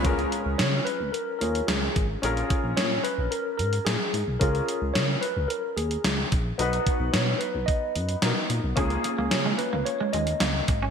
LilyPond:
<<
  \new Staff \with { instrumentName = "Tine electric piano" } { \time 4/4 \key des \mixolydian \tempo 4 = 110 r4 des''8 ces''8 bes'8 bes'8 aes'8. r16 | r4 des''8 ces''8 bes'8 bes'8 aes'8. r16 | bes'4 des''8 ces''8 bes'8 aes'4 r8 | r4 des''8 ces''8 ees''4 r4 |
r4 des''8 ces''8 des''8 ees''4 r8 | }
  \new Staff \with { instrumentName = "Grand piano" } { \time 4/4 \key des \mixolydian <des' f' aes' bes'>2~ <des' f' aes' bes'>8 <des' f' aes' bes'>4. | <des' f' aes' bes'>1 | <des' f' aes' bes'>1 | <ces' ees' ges' ces''>2. <ces' ees' ges' bes'>4 |
<bes des' f' aes'>1 | }
  \new Staff \with { instrumentName = "Clean electric guitar" } { \time 4/4 \key des \mixolydian r1 | r1 | r1 | r1 |
des'16 r8 bes16 r16 aes16 r16 bes16 r16 aes16 aes16 r16 bes16 r8 des'16 | }
  \new Staff \with { instrumentName = "Analog synth bass" } { \clef bass \time 4/4 \key des \mixolydian des,8 r16 des,16 des8 r16 des,16 r8 ees,8 des,8 aes,,8 | bes,,8 r16 bes,,16 bes,8 r16 bes,,16 r8 aes,8 bes,16 r16 aes,16 ces,16 | des,8 r16 des,16 des8 r16 des,16 r8 ees,8 des,8 bes,,8 | ces,8 r16 ces,16 ces8 r16 ces,16 r8 ges,8 ces16 r16 bes,16 ces,16 |
des,8 r16 des,16 des8 r16 des,16 r8 ees,8 des,8 aes,,8 | }
  \new DrumStaff \with { instrumentName = "Drums" } \drummode { \time 4/4 <hh bd>16 hh16 hh8 <hh sn>8 hh8 hh8 hh16 hh16 <hh sn>8 <hh bd>8 | hh16 hh16 <hh bd>8 <hh sn>8 hh8 hh8 hh16 hh16 <hh sn>8 hh8 | <hh bd>16 hh16 hh8 <hh sn>8 hh8 hh8 hh16 hh16 <hh sn>8 <hh bd>8 | hh16 hh16 <hh bd>8 <hh sn>8 hh8 <hh bd>8 hh16 hh16 <hh sn>8 hh8 |
<hh bd>16 hh16 hh8 <hh sn>8 hh8 hh8 hh16 hh16 <hh sn>8 <hh bd>8 | }
>>